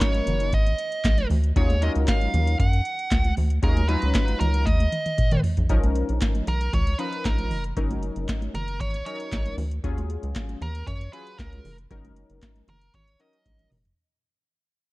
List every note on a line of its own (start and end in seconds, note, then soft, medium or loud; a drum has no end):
0.00 0.50 F#3 medium
0.00 0.50 A#3 medium
0.00 0.50 C#4 medium
0.00 0.50 D#4 medium
0.00 0.50 A#4 medium
0.00 0.55 C#5 medium
0.00 kick loud
0.00 snare loud
0.00 clap loud
0.00 closed hi-hat loud
0.14 closed hi-hat medium
0.14 muted conga soft
0.14 high conga medium
0.27 0.54 F#1 medium
0.27 closed hi-hat medium
0.27 low conga medium
0.40 closed hi-hat medium
0.52 0.75 G#1 loud
0.52 1.27 D#5 loud
0.52 kick loud
0.52 closed hi-hat medium
0.52 muted conga soft
0.66 closed hi-hat medium
0.66 muted conga soft
0.78 closed hi-hat medium
0.92 closed hi-hat medium
1.04 1.26 A#1 medium
1.04 kick loud
1.04 snare loud
1.04 clap medium
1.04 closed hi-hat loud
1.18 closed hi-hat soft
1.18 high conga medium
1.30 1.52 D2 loud
1.30 open hi-hat medium
1.30 high conga medium
1.30 low conga medium
1.44 closed hi-hat medium
1.56 1.90 D#2 loud
1.56 1.75 F#3 medium
1.56 1.75 C#4 medium
1.56 1.75 D#4 medium
1.56 1.75 F4 medium
1.56 1.75 G#4 medium
1.56 1.83 C#5 medium
1.56 kick loud
1.56 closed hi-hat medium
1.70 closed hi-hat medium
1.70 high conga medium
1.81 2.57 F#3 medium
1.81 2.57 C#4 medium
1.81 2.57 D#4 medium
1.81 2.57 F4 medium
1.81 2.57 A#4 loud
1.81 1.90 D#5 medium
1.81 closed hi-hat medium
1.95 2.06 C#2 loud
1.95 closed hi-hat medium
2.08 2.56 F5 loud
2.08 kick loud
2.08 snare loud
2.08 clap loud
2.08 closed hi-hat loud
2.08 muted conga soft
2.21 closed hi-hat soft
2.21 high conga medium
2.34 2.56 D#2 loud
2.34 closed hi-hat medium
2.34 low conga medium
2.47 closed hi-hat medium
2.60 2.81 F#2 loud
2.60 3.33 F#5 loud
2.60 kick loud
2.60 closed hi-hat medium
2.60 muted conga soft
2.73 closed hi-hat medium
2.85 closed hi-hat medium
2.99 closed hi-hat medium
3.11 3.33 C#2 medium
3.11 kick loud
3.11 snare loud
3.11 clap medium
3.11 closed hi-hat medium
3.24 closed hi-hat soft
3.24 muted conga soft
3.24 high conga medium
3.37 3.59 D2 medium
3.37 open hi-hat medium
3.37 high conga soft
3.37 low conga medium
3.50 closed hi-hat medium
3.62 3.97 D#2 loud
3.62 3.82 F#3 medium
3.62 3.82 C#4 medium
3.62 3.82 D#4 medium
3.62 3.82 F4 medium
3.62 3.82 G#4 medium
3.62 3.88 A#4 medium
3.62 kick loud
3.62 closed hi-hat medium
3.77 closed hi-hat soft
3.77 muted conga soft
3.77 high conga loud
3.88 4.63 F#3 medium
3.88 4.64 C#4 medium
3.88 4.64 D#4 medium
3.88 4.64 F4 medium
3.88 4.40 B4 loud
3.88 4.64 A#5 loud
3.88 closed hi-hat medium
4.02 4.13 C#2 medium
4.02 closed hi-hat soft
4.14 kick loud
4.14 snare loud
4.14 clap loud
4.14 closed hi-hat loud
4.14 muted conga soft
4.28 closed hi-hat medium
4.28 high conga medium
4.40 4.68 C#2 loud
4.40 4.67 A#4 loud
4.40 closed hi-hat medium
4.40 low conga medium
4.54 closed hi-hat medium
4.66 4.88 D#2 loud
4.66 5.40 D#5 loud
4.66 kick loud
4.66 closed hi-hat medium
4.66 high tom medium
4.66 muted conga soft
4.66 low conga medium
4.80 closed hi-hat medium
4.80 high tom medium
4.80 muted conga soft
4.92 closed hi-hat medium
4.92 mid tom medium
5.06 closed hi-hat medium
5.06 mid tom medium
5.18 kick loud
5.18 closed hi-hat medium
5.18 mid tom medium
5.18 muted conga soft
5.31 5.42 D#3 loud
5.31 closed hi-hat medium
5.31 mid tom medium
5.31 high conga medium
5.44 floor tom loud
5.44 open hi-hat medium
5.44 high conga soft
5.44 low conga medium
5.57 5.68 A#1 medium
5.57 closed hi-hat soft
5.57 floor tom loud
5.69 6.03 B1 loud
5.69 6.44 F3 medium
5.69 6.45 C#4 medium
5.69 6.45 D#4 medium
5.69 6.45 A#4 loud
5.69 kick loud
5.69 closed hi-hat medium
5.69 muted conga soft
5.83 closed hi-hat medium
5.83 muted conga soft
5.83 high conga medium
5.96 closed hi-hat medium
6.09 6.20 A#1 medium
6.09 closed hi-hat soft
6.21 kick loud
6.21 snare loud
6.21 clap loud
6.21 closed hi-hat loud
6.35 closed hi-hat soft
6.35 muted conga soft
6.35 high conga medium
6.47 6.69 B1 medium
6.47 6.74 A#4 loud
6.47 closed hi-hat medium
6.47 low conga medium
6.61 closed hi-hat medium
6.73 6.95 C#2 loud
6.73 6.99 C#5 loud
6.73 kick loud
6.73 closed hi-hat medium
6.73 muted conga soft
6.73 low conga medium
6.87 closed hi-hat medium
6.87 muted conga soft
6.99 7.55 F3 medium
6.99 7.55 C#4 medium
6.99 7.55 D#4 medium
6.99 7.56 A#4 medium
6.99 7.25 B4 loud
6.99 closed hi-hat medium
7.13 closed hi-hat medium
7.24 7.52 A#1 medium
7.24 7.62 A#4 medium
7.24 kick loud
7.24 snare loud
7.24 clap medium
7.24 closed hi-hat medium
7.24 muted conga soft
7.38 closed hi-hat soft
7.38 muted conga soft
7.38 high conga medium
7.50 7.73 F1 medium
7.50 open hi-hat medium
7.50 low conga medium
7.64 closed hi-hat soft
7.77 8.10 F#1 loud
7.77 8.52 F#3 medium
7.77 8.52 C#4 medium
7.77 8.52 D#4 medium
7.77 8.52 A#4 medium
7.77 kick loud
7.77 closed hi-hat medium
7.90 closed hi-hat medium
7.90 muted conga soft
7.90 high conga medium
8.03 closed hi-hat medium
8.16 8.27 F#1 medium
8.16 closed hi-hat soft
8.29 kick loud
8.29 snare loud
8.29 clap loud
8.29 closed hi-hat loud
8.42 closed hi-hat medium
8.42 muted conga soft
8.42 high conga medium
8.54 8.82 F#1 medium
8.54 8.80 A#4 loud
8.54 closed hi-hat medium
8.54 low conga medium
8.68 closed hi-hat medium
8.80 9.02 G#1 loud
8.80 9.05 C#5 loud
8.80 kick loud
8.80 closed hi-hat medium
8.80 low conga medium
8.94 closed hi-hat medium
8.94 muted conga soft
9.06 9.62 F#3 medium
9.06 9.62 C#4 medium
9.06 9.63 D#4 medium
9.06 9.63 A#4 medium
9.06 9.54 C#5 loud
9.06 closed hi-hat medium
9.20 closed hi-hat medium
9.32 9.54 A#1 medium
9.32 kick loud
9.32 snare loud
9.32 clap medium
9.32 closed hi-hat medium
9.32 muted conga soft
9.46 closed hi-hat soft
9.46 high conga medium
9.58 9.80 D2 loud
9.58 open hi-hat medium
9.58 low conga medium
9.71 closed hi-hat medium
9.84 10.17 D#2 loud
9.84 10.59 F#3 medium
9.84 10.59 C#4 medium
9.84 10.59 F4 medium
9.84 10.59 G#4 loud
9.84 kick loud
9.84 closed hi-hat medium
9.98 closed hi-hat soft
9.98 muted conga soft
9.98 high conga medium
10.10 closed hi-hat medium
10.23 10.34 C#2 loud
10.23 closed hi-hat medium
10.35 kick loud
10.35 snare loud
10.35 clap loud
10.35 closed hi-hat loud
10.49 closed hi-hat medium
10.49 muted conga soft
10.49 high conga medium
10.61 10.83 D#2 loud
10.61 10.87 A#4 loud
10.61 closed hi-hat medium
10.61 low conga medium
10.75 closed hi-hat medium
10.87 11.09 F#2 loud
10.87 11.13 C#5 loud
10.87 kick loud
10.87 closed hi-hat medium
10.87 muted conga soft
10.87 low conga medium
11.01 closed hi-hat medium
11.01 muted conga soft
11.13 11.69 F#3 medium
11.13 11.69 C#4 medium
11.13 11.69 F4 medium
11.13 11.69 G#4 medium
11.13 11.38 B4 loud
11.13 closed hi-hat medium
11.27 closed hi-hat medium
11.38 11.61 C#2 loud
11.38 11.76 A#4 medium
11.38 kick loud
11.38 snare loud
11.38 clap medium
11.38 closed hi-hat medium
11.38 muted conga soft
11.53 closed hi-hat soft
11.53 muted conga soft
11.53 high conga medium
11.65 11.87 F1 loud
11.65 open hi-hat medium
11.65 low conga medium
11.78 closed hi-hat medium
11.90 12.24 F#1 loud
11.90 12.65 F#3 medium
11.90 12.65 C#4 medium
11.90 12.66 D#4 medium
11.90 12.66 A#4 loud
11.90 kick loud
11.90 closed hi-hat medium
11.90 muted conga soft
12.05 closed hi-hat medium
12.05 muted conga soft
12.05 high conga medium
12.16 closed hi-hat medium
12.30 12.40 F#1 medium
12.30 closed hi-hat medium
12.42 kick loud
12.42 snare loud
12.42 clap loud
12.42 closed hi-hat loud
12.42 muted conga soft
12.56 closed hi-hat soft
12.56 muted conga soft
12.56 high conga medium
12.68 12.90 F#1 loud
12.68 12.94 A#4 medium
12.68 closed hi-hat medium
12.68 low conga medium
12.82 closed hi-hat medium
12.94 13.16 G#1 loud
12.94 13.21 C#5 medium
12.94 kick loud
12.94 closed hi-hat medium
12.94 muted conga soft
12.94 low conga medium
13.08 closed hi-hat medium
13.19 13.76 F#3 medium
13.19 13.76 C#4 medium
13.19 13.76 D#4 medium
13.19 13.76 A#4 medium
13.19 13.68 D#5 loud
13.19 closed hi-hat medium
13.33 closed hi-hat medium
13.45 13.68 A#1 medium
13.45 kick loud
13.45 closed hi-hat loud
13.45 high tom medium
13.45 muted conga soft
13.59 closed hi-hat soft
13.59 mid tom medium
13.59 high conga medium
13.71 13.93 F1 loud
13.71 mid tom medium
13.71 open hi-hat medium
13.71 low conga medium
13.85 closed hi-hat soft
13.85 floor tom medium